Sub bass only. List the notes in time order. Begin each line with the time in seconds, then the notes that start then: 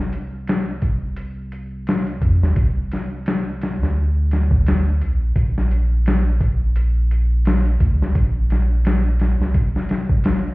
Already playing: C2
2.22 F2
2.42 D2
2.56 C2
3.81 D2
5.01 A#1
5.36 A#1
7.80 D2
8.00 C2
8.15 A#1
9.39 C2